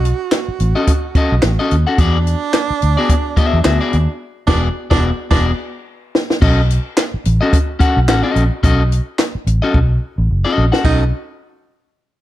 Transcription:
0.00 0.12 B1 loud
0.00 1.66 F#4 medium
0.05 closed hi-hat medium
0.32 snare loud
0.32 clap medium
0.32 closed hi-hat medium
0.48 muted fingered electric bass stroke soft
0.60 0.73 A1 loud
0.60 closed hi-hat medium
0.76 0.91 C#4 medium
0.76 0.91 F#4 medium
0.76 0.91 A4 medium
0.76 0.91 D#5 medium
0.87 kick medium
0.87 closed hi-hat loud
1.15 1.33 C#4 medium
1.15 1.34 F#4 medium
1.15 1.34 A4 medium
1.15 1.34 D#5 loud
1.15 muted fingered electric bass stroke soft
1.15 kick loud
1.15 closed hi-hat medium
1.32 1.41 B1 medium
1.42 1.56 A1 medium
1.42 snare loud
1.42 clap medium
1.42 closed hi-hat medium
1.59 1.75 C#4 medium
1.59 1.75 F#4 medium
1.59 1.75 A4 medium
1.59 1.74 D#5 medium
1.71 1.84 D#2 medium
1.71 closed hi-hat medium
1.87 1.98 C#4 medium
1.87 1.98 F#4 medium
1.87 1.98 A4 medium
1.87 1.98 F#5 medium
1.98 2.34 E2 loud
1.98 2.17 B3 medium
1.98 4.16 D4 loud
1.98 2.17 F#4 loud
1.98 2.17 G#4 medium
1.98 2.18 D5 loud
1.98 kick medium
1.98 closed hi-hat medium
2.27 closed hi-hat medium
2.54 snare medium
2.54 clap medium
2.54 closed hi-hat medium
2.70 muted fingered electric bass stroke soft
2.82 2.95 D2 medium
2.82 closed hi-hat medium
2.97 3.14 B3 medium
2.97 3.13 F#4 medium
2.97 3.13 G#4 medium
2.97 3.13 D5 medium
3.09 kick medium
3.09 closed hi-hat loud
3.37 3.58 B3 medium
3.37 3.58 F#4 medium
3.37 3.59 G#4 medium
3.37 3.59 E5 loud
3.37 muted fingered electric bass stroke soft
3.37 kick loud
3.37 closed hi-hat medium
3.54 3.63 E2 medium
3.64 3.78 D2 medium
3.64 3.79 B3 medium
3.64 3.80 F#4 medium
3.64 3.80 G#4 medium
3.64 3.80 E5 medium
3.64 snare loud
3.64 clap medium
3.64 closed hi-hat medium
3.81 3.97 B3 medium
3.81 3.97 F#4 medium
3.81 3.96 G#4 medium
3.81 3.96 D5 medium
3.93 4.06 D#2 loud
3.93 closed hi-hat medium
4.47 4.67 E1 loud
4.47 4.67 B3 medium
4.47 4.62 D4 loud
4.47 4.68 F#4 loud
4.47 4.68 G#4 medium
4.47 4.68 D5 medium
4.47 kick loud
4.47 snare loud
4.47 crash medium
4.90 5.10 E1 medium
4.90 5.10 B3 loud
4.90 5.05 D4 loud
4.90 5.10 F#4 loud
4.90 5.10 G#4 medium
4.90 5.09 D5 loud
4.90 kick loud
4.90 snare loud
5.31 5.51 E1 medium
5.31 5.51 B3 medium
5.31 5.45 D4 loud
5.31 5.51 F#4 loud
5.31 5.51 G#4 medium
5.31 5.50 D5 medium
5.31 kick loud
5.31 snare loud
5.31 crash medium
6.15 snare loud
6.30 snare medium
6.42 6.77 B1 loud
6.42 6.60 C#4 medium
6.42 6.60 F#4 medium
6.42 6.60 A4 medium
6.42 6.61 D#5 loud
6.42 kick loud
6.42 crash medium
6.70 closed hi-hat medium
6.97 snare medium
6.97 clap medium
6.97 closed hi-hat medium
7.14 muted fingered electric bass stroke soft
7.25 7.38 A1 loud
7.25 closed hi-hat medium
7.41 7.57 C#4 medium
7.41 7.57 F#4 medium
7.41 7.57 A4 medium
7.41 7.56 D#5 medium
7.53 kick loud
7.53 closed hi-hat loud
7.79 7.98 C#4 medium
7.79 7.98 F#4 medium
7.79 7.99 A4 medium
7.79 7.99 F#5 loud
7.79 muted fingered electric bass stroke soft
7.79 kick loud
7.79 closed hi-hat medium
7.97 8.08 B1 medium
8.08 8.21 A1 medium
8.08 8.23 C#4 medium
8.08 8.23 F#4 medium
8.08 8.23 A4 medium
8.08 8.23 F#5 medium
8.08 snare loud
8.08 clap medium
8.08 closed hi-hat medium
8.23 8.44 C#4 medium
8.23 8.43 F#4 medium
8.23 8.43 A4 medium
8.23 8.43 D#5 medium
8.36 8.48 A#1 loud
8.36 closed hi-hat medium
8.63 8.99 B1 loud
8.63 8.81 C#4 medium
8.63 8.82 F#4 medium
8.63 8.82 A4 medium
8.63 8.82 D#5 medium
8.63 kick loud
8.63 closed hi-hat medium
8.92 closed hi-hat medium
9.19 snare medium
9.19 clap medium
9.19 closed hi-hat medium
9.35 muted fingered electric bass stroke soft
9.47 9.59 A1 loud
9.47 closed hi-hat medium
9.62 9.78 C#4 medium
9.62 9.78 F#4 medium
9.62 9.78 A4 medium
9.62 9.78 D#5 medium
9.74 9.97 B1 loud
9.74 kick medium
10.18 10.28 A1 medium
10.30 10.43 F#1 medium
10.45 10.65 C#4 medium
10.45 10.65 F#4 medium
10.45 10.64 A4 medium
10.45 10.64 D#5 medium
10.58 10.70 A#1 medium
10.72 10.83 C#4 soft
10.72 10.84 F#4 medium
10.72 10.84 A4 medium
10.72 10.84 F#5 medium
10.72 snare medium
10.84 11.10 B1 loud
10.84 11.02 C#4 medium
10.84 11.04 D#4 medium
10.84 11.03 F#4 medium
10.84 11.03 A4 medium
10.84 11.03 D#5 medium
10.84 kick loud
10.84 crash medium

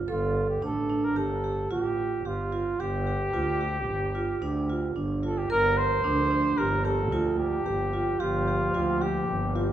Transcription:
0.07 0.55 G1 loud
0.07 0.47 F4 medium
0.07 0.55 A4 medium
0.49 0.62 G4 medium
0.62 1.18 A1 medium
0.62 0.86 D4 medium
0.62 1.05 A4 medium
0.89 1.13 D4 medium
1.04 1.19 A#4 medium
1.16 1.64 G1 medium
1.16 1.40 G4 medium
1.16 1.71 A4 medium
1.44 1.68 G4 medium
1.70 2.18 A1 medium
1.70 2.18 F4 medium
1.70 2.28 G4 medium
2.25 2.72 G1 medium
2.25 2.81 F4 medium
2.25 2.49 G4 medium
2.52 2.76 F4 medium
2.79 3.27 G1 medium
2.79 4.96 G4 medium
2.79 3.03 G4 medium
3.07 3.30 G4 medium
3.33 3.89 D2 medium
3.33 3.57 F4 medium
3.61 4.08 G4 medium
3.87 4.35 G1 medium
4.15 4.39 F4 medium
4.41 4.89 D2 medium
4.41 4.66 D4 medium
4.69 4.93 F4 medium
4.95 5.43 G1 medium
4.95 5.20 D4 medium
5.23 5.47 F4 medium
5.23 5.39 A4 medium
5.38 5.50 G4 medium
5.49 5.97 G1 medium
5.49 9.73 F3 medium
5.49 9.73 A#3 medium
5.49 9.73 G4 medium
5.49 5.97 A#4 medium
5.49 5.79 A#4 loud
5.77 6.59 C5 loud
6.03 6.51 D2 medium
6.03 6.28 D4 medium
6.31 6.55 D4 medium
6.58 7.13 G1 medium
6.58 6.82 G4 medium
6.58 6.86 A#4 medium
6.84 7.09 G4 medium
6.84 7.38 A4 medium
7.12 7.59 D2 medium
7.12 7.60 F4 medium
7.38 8.21 G4 medium
7.65 8.13 G1 medium
7.65 7.90 G4 medium
7.93 8.17 F4 medium
8.19 8.68 G1 medium
8.19 9.03 F4 medium
8.19 8.44 G4 medium
8.48 8.71 G4 medium
8.74 9.22 D2 medium
8.74 8.98 F4 medium
9.01 9.49 G4 medium
9.01 9.56 G4 medium
9.28 9.73 G1 medium
9.55 9.68 F4 medium
9.55 9.73 F4 medium

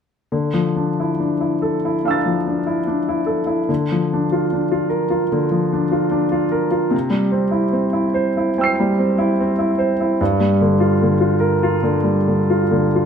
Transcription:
0.32 1.98 D3 soft
0.54 0.89 F3 soft
0.76 1.11 D4 soft
1.00 1.33 E4 soft
1.20 1.53 D4 soft
1.41 1.74 E4 soft
1.62 1.95 A4 soft
1.85 2.17 E4 soft
2.05 2.37 D4 soft
2.05 3.66 F5 soft
2.05 3.67 E6 soft
2.11 3.69 A6 soft
2.26 2.58 F3 soft
2.47 2.79 D4 soft
2.67 2.99 E4 soft
2.87 3.19 D4 soft
3.09 3.40 E4 soft
3.26 3.60 A4 soft
3.47 3.68 E4 soft
3.69 5.29 D3 soft
3.92 4.24 F3 soft
4.13 4.45 D4 soft
4.32 4.65 F4 soft
4.53 4.85 D4 soft
4.71 5.04 F4 soft
4.89 5.23 A#4 soft
5.10 5.44 F4 soft
5.32 6.89 D3 soft
5.51 5.84 F3 soft
5.73 6.05 D4 soft
5.92 6.24 F4 soft
6.11 6.44 D4 soft
6.32 6.65 F4 soft
6.51 6.84 A#4 soft
6.71 6.92 F4 soft
6.90 8.52 C3 soft
7.10 7.43 G3 soft
7.32 7.64 C4 soft
7.51 7.85 E4 soft
7.73 8.06 C4 soft
7.93 8.27 E4 soft
8.14 8.48 C5 soft
8.37 8.70 E4 soft
8.58 8.91 C4 soft
8.58 10.17 G5 soft
8.58 10.18 E6 soft
8.64 10.19 C7 soft
8.80 9.12 G3 soft
8.98 9.31 C4 soft
9.18 9.51 E4 soft
9.40 9.72 C4 soft
9.59 9.91 E4 soft
9.78 10.11 C5 soft
10.01 10.20 E4 soft
10.21 11.80 G2 soft
10.40 10.72 G3 soft
10.61 10.93 D3 soft
10.80 11.13 F4 soft
11.03 11.34 D3 soft
11.20 11.54 F4 soft
11.40 11.74 A#4 soft
11.63 11.97 F4 soft
11.83 12.18 D3 soft
12.03 12.39 G3 soft
12.28 12.63 D3 soft
12.50 12.86 F4 soft
12.71 13.05 D3 soft
12.95 13.05 F4 soft

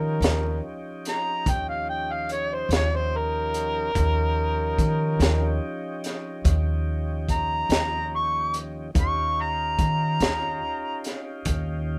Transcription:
0.00 0.19 D#3 medium
0.00 3.92 F3 medium
0.00 3.92 C#4 medium
0.00 3.92 D#4 medium
0.00 3.92 G4 medium
0.00 0.61 A#4 medium
0.21 0.59 D#2 medium
0.21 snare medium
0.21 closed hi-hat medium
1.05 1.51 A#5 medium
1.05 snare soft
1.05 closed hi-hat medium
1.46 2.67 D#2 medium
1.46 1.67 G5 medium
1.46 kick medium
1.46 closed hi-hat medium
1.69 1.87 F5 medium
1.90 2.13 G5 medium
2.12 2.29 F5 medium
2.29 2.56 C#5 medium
2.29 closed hi-hat medium
2.54 2.71 C5 medium
2.69 3.90 D#2 medium
2.69 2.97 C#5 medium
2.69 snare medium
2.69 closed hi-hat medium
2.95 3.18 C5 medium
3.17 5.60 A#4 medium
3.54 closed hi-hat medium
3.95 4.74 D#2 medium
3.95 8.91 F3 medium
3.95 8.91 C#4 medium
3.95 8.91 D#4 medium
3.95 8.91 G4 medium
3.95 kick loud
3.95 closed hi-hat medium
4.78 5.16 D#3 medium
4.78 kick medium
4.78 closed hi-hat medium
5.20 5.58 D#2 medium
5.20 snare medium
5.20 closed hi-hat medium
6.04 snare soft
6.04 closed hi-hat medium
6.45 7.66 D#2 medium
6.45 kick loud
6.45 closed hi-hat medium
7.29 8.11 A#5 medium
7.29 kick medium
7.29 closed hi-hat medium
7.69 8.91 D#2 medium
7.69 snare medium
7.69 closed hi-hat medium
8.16 8.54 C#6 medium
8.54 closed hi-hat medium
8.94 9.74 D#2 medium
8.94 11.99 C#4 medium
8.94 11.99 D#4 medium
8.94 11.99 F4 medium
8.94 11.99 G4 medium
8.94 kick loud
8.94 closed hi-hat medium
9.01 9.43 C#6 medium
9.41 11.02 A#5 medium
9.79 10.17 D#3 medium
9.79 kick medium
9.79 closed hi-hat medium
10.20 10.59 D#2 medium
10.20 snare medium
10.20 closed hi-hat medium
11.04 snare soft
11.04 closed hi-hat medium
11.45 11.99 D#2 medium
11.45 kick medium
11.45 closed hi-hat medium

